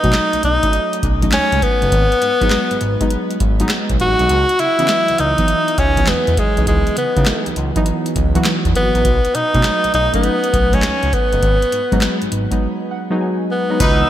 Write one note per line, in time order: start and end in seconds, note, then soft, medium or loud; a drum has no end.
0.00 0.11 B2 loud
0.00 0.40 F#3 medium
0.00 0.40 A3 medium
0.00 0.41 C#4 medium
0.00 0.44 D#4 loud
0.00 kick medium
0.00 closed hi-hat soft
0.04 0.41 D#4 medium
0.13 snare loud
0.13 clap medium
0.13 closed hi-hat medium
0.33 0.37 B1 soft
0.33 closed hi-hat soft
0.43 0.58 B1 medium
0.43 0.99 D#4 loud
0.43 closed hi-hat medium
0.63 1.00 F#3 medium
0.63 1.00 A3 medium
0.63 1.00 C#4 medium
0.63 1.00 D#4 medium
0.63 kick medium
0.63 closed hi-hat medium
0.73 closed hi-hat medium
0.93 closed hi-hat medium
1.03 1.25 B1 medium
1.03 kick medium
1.03 closed hi-hat medium
1.22 1.59 F#3 medium
1.22 1.59 A3 medium
1.22 1.59 C#4 medium
1.22 1.60 D#4 medium
1.22 kick medium
1.22 closed hi-hat medium
1.32 1.40 C#2 soft
1.32 1.65 C#4 loud
1.32 snare loud
1.32 clap medium
1.32 closed hi-hat medium
1.52 1.60 C#2 medium
1.52 closed hi-hat soft
1.62 3.41 B3 loud
1.62 kick medium
1.62 closed hi-hat medium
1.82 1.90 F#1 medium
1.82 1.92 F#3 medium
1.82 1.92 A3 medium
1.82 1.92 C#4 medium
1.82 1.92 D#4 medium
1.82 closed hi-hat soft
1.92 2.07 G#1 loud
1.92 kick loud
1.92 closed hi-hat medium
2.12 closed hi-hat soft
2.22 2.30 G#2 medium
2.22 closed hi-hat medium
2.41 2.49 G#2 loud
2.41 2.78 F#3 medium
2.41 2.78 G#3 medium
2.41 2.78 B3 medium
2.41 2.79 D#4 loud
2.41 kick medium
2.41 closed hi-hat soft
2.50 snare loud
2.50 clap medium
2.50 closed hi-hat medium
2.71 2.75 G#1 soft
2.71 closed hi-hat soft
2.81 2.96 G#1 medium
2.81 closed hi-hat medium
3.00 3.37 F#3 medium
3.00 3.38 G#3 medium
3.00 3.38 B3 medium
3.00 3.38 D#4 medium
3.00 kick medium
3.00 closed hi-hat soft
3.11 closed hi-hat medium
3.31 closed hi-hat soft
3.40 3.63 G#1 medium
3.40 kick medium
3.40 closed hi-hat medium
3.60 3.97 F#3 medium
3.60 3.97 G#3 medium
3.60 3.97 B3 medium
3.60 3.97 D#4 loud
3.60 closed hi-hat medium
3.69 snare loud
3.69 clap medium
3.69 closed hi-hat medium
3.89 3.98 B1 medium
3.89 kick medium
3.89 closed hi-hat soft
4.00 4.15 A1 medium
4.00 4.62 F#4 loud
4.00 closed hi-hat medium
4.19 4.27 B1 medium
4.19 4.29 F#3 medium
4.19 4.30 G#3 medium
4.19 4.30 B3 medium
4.19 4.30 D#4 medium
4.19 closed hi-hat soft
4.29 4.44 C#2 loud
4.29 closed hi-hat medium
4.49 closed hi-hat soft
4.59 4.67 C#3 soft
4.59 5.21 E4 loud
4.59 closed hi-hat medium
4.79 4.87 C#3 loud
4.79 5.16 E3 medium
4.79 5.16 F#3 medium
4.79 5.16 B3 medium
4.79 5.16 D#5 medium
4.79 closed hi-hat soft
4.88 snare loud
4.88 clap medium
4.88 closed hi-hat medium
5.08 5.13 C#2 soft
5.08 closed hi-hat soft
5.18 5.34 C#2 medium
5.18 5.81 D#4 loud
5.18 closed hi-hat medium
5.38 5.75 E3 medium
5.38 5.75 F#3 medium
5.38 5.75 B3 medium
5.38 5.76 D#4 medium
5.38 kick medium
5.38 closed hi-hat medium
5.48 closed hi-hat medium
5.68 closed hi-hat soft
5.78 6.00 C#2 medium
5.78 6.10 C#4 medium
5.78 kick medium
5.78 closed hi-hat medium
5.97 6.34 E3 medium
5.97 6.35 F#3 medium
5.97 6.35 B3 medium
5.97 6.35 D#4 medium
5.97 kick medium
5.97 closed hi-hat medium
6.07 6.16 E2 soft
6.07 6.40 B3 medium
6.07 snare loud
6.07 clap medium
6.07 closed hi-hat medium
6.27 6.35 E2 medium
6.27 closed hi-hat soft
6.37 6.67 G#3 medium
6.37 kick medium
6.37 closed hi-hat medium
6.57 6.65 B1 medium
6.57 6.94 E3 medium
6.57 6.94 F#3 medium
6.57 6.94 B3 medium
6.57 6.95 D#4 medium
6.57 closed hi-hat soft
6.67 6.82 C#2 loud
6.67 6.95 G#3 medium
6.67 kick medium
6.67 closed hi-hat medium
6.87 closed hi-hat soft
6.97 7.05 C#3 soft
6.97 7.53 B3 medium
6.97 closed hi-hat medium
7.16 7.24 C#3 loud
7.16 7.53 E3 medium
7.16 7.53 F#3 medium
7.16 7.54 B3 medium
7.16 7.54 D#4 medium
7.16 kick medium
7.16 closed hi-hat soft
7.26 snare loud
7.26 clap medium
7.26 closed hi-hat medium
7.46 7.51 C#2 soft
7.46 closed hi-hat soft
7.56 7.71 C#2 medium
7.56 closed hi-hat medium
7.76 8.13 E3 medium
7.76 8.13 F#3 medium
7.76 8.13 B3 medium
7.76 8.13 D#4 loud
7.76 kick medium
7.76 closed hi-hat medium
7.86 closed hi-hat medium
8.06 closed hi-hat medium
8.16 8.38 C#2 loud
8.16 kick medium
8.16 closed hi-hat medium
8.35 8.72 E3 medium
8.35 8.72 F#3 medium
8.35 8.72 B3 medium
8.35 8.73 F#4 loud
8.35 closed hi-hat medium
8.44 snare loud
8.44 clap medium
8.44 closed hi-hat medium
8.65 8.73 E2 medium
8.65 kick medium
8.65 closed hi-hat soft
8.75 8.90 G#1 medium
8.75 9.37 B3 loud
8.75 closed hi-hat medium
8.94 9.02 A1 medium
8.94 9.05 E3 medium
8.94 9.05 F#3 medium
8.94 9.05 B3 medium
8.94 9.05 D#4 medium
8.94 closed hi-hat soft
9.05 9.20 B1 medium
9.05 kick medium
9.05 closed hi-hat medium
9.25 closed hi-hat medium
9.35 9.43 B2 medium
9.35 9.94 D#4 loud
9.35 closed hi-hat medium
9.53 9.62 B2 loud
9.53 9.91 F#3 medium
9.53 9.91 A3 medium
9.53 9.91 C#4 medium
9.53 9.91 D#4 medium
9.53 kick medium
9.53 closed hi-hat soft
9.63 snare loud
9.63 clap medium
9.63 closed hi-hat medium
9.84 9.88 B1 soft
9.84 closed hi-hat soft
9.94 10.09 B1 medium
9.94 10.13 D#4 loud
9.94 closed hi-hat medium
10.13 10.50 F#3 medium
10.13 10.50 A3 medium
10.13 10.75 B3 medium
10.13 10.51 C#4 medium
10.13 10.51 D#4 loud
10.13 kick medium
10.13 closed hi-hat medium
10.24 closed hi-hat medium
10.44 closed hi-hat medium
10.54 10.76 B1 medium
10.54 kick medium
10.54 closed hi-hat medium
10.73 11.10 F#3 medium
10.73 11.10 A3 medium
10.73 11.10 C#4 medium
10.73 11.15 C#4 loud
10.73 11.10 D#4 medium
10.73 kick loud
10.73 closed hi-hat medium
10.82 10.91 C#2 medium
10.82 snare loud
10.82 clap medium
10.82 closed hi-hat medium
11.03 11.11 C#2 medium
11.03 closed hi-hat soft
11.13 12.32 B3 medium
11.13 kick medium
11.13 closed hi-hat medium
11.32 11.40 F#1 medium
11.32 11.42 F#3 medium
11.32 11.43 A3 medium
11.32 11.43 C#4 medium
11.32 11.43 D#4 medium
11.32 closed hi-hat soft
11.43 11.57 G#1 loud
11.43 kick medium
11.43 closed hi-hat medium
11.62 closed hi-hat soft
11.72 11.80 G#2 medium
11.72 closed hi-hat medium
11.92 12.00 G#2 loud
11.92 12.29 F#3 medium
11.92 12.29 G#3 medium
11.92 12.29 B3 medium
11.92 12.29 D#4 medium
11.92 kick medium
11.92 closed hi-hat soft
12.01 snare loud
12.01 clap medium
12.01 closed hi-hat medium
12.22 12.26 G#1 soft
12.22 closed hi-hat soft
12.32 12.47 G#1 medium
12.32 closed hi-hat medium
12.51 12.88 F#3 medium
12.51 12.88 G#3 medium
12.51 12.88 B3 medium
12.51 12.88 D#4 medium
12.51 kick medium
12.51 closed hi-hat medium
12.91 13.19 F#5 medium
13.10 13.47 F#3 loud
13.10 13.48 G#3 medium
13.10 13.48 B3 medium
13.10 13.48 D#4 loud
13.21 13.76 G#5 medium
13.51 13.83 B3 medium
13.70 13.80 F#3 medium
13.70 13.80 G#3 medium
13.70 13.80 B3 medium
13.70 13.80 D#4 medium
13.80 14.03 C#2 loud
13.80 14.02 D#4 loud
13.80 14.10 D#4 loud
13.80 14.02 E4 medium
13.80 14.02 F#4 medium
13.80 14.10 B4 medium
13.80 14.02 B4 loud
13.80 14.10 F#5 medium
13.80 14.10 D#6 medium
13.80 14.10 E6 medium
13.80 kick loud
13.80 closed hi-hat medium
13.80 tambourine medium
13.99 14.10 E3 medium
13.99 14.10 F#3 medium
13.99 14.10 B3 medium
13.99 14.10 D#4 medium